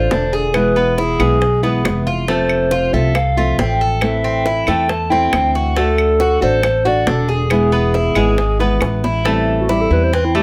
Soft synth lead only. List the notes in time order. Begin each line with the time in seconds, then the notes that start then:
Already playing: C5
0.53 B4
0.98 G#4
2.29 C5
2.93 E5
3.15 F5
3.38 E5
4.03 E5
4.69 G5
4.89 A5
5.10 G5
5.77 A4
6.43 C5
6.87 D5
7.08 A4
7.30 G#4
9.60 F#4
9.71 G4
9.81 A4
9.92 B4
10.04 C5
10.14 B4
10.25 E4
10.36 G4